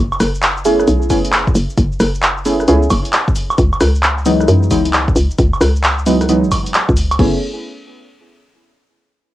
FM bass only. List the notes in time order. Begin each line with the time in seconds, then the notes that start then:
0.20 F#1
0.88 B1
1.10 F#1
1.55 F#1
1.78 F#1
2.00 F#1
2.68 C#2
2.91 F#1
3.58 C#2
3.81 C#2
4.48 F#2
4.71 C#2
5.16 C#2
5.39 C#2
5.61 C#2
6.44 G#1
6.89 C#2
7.19 F#1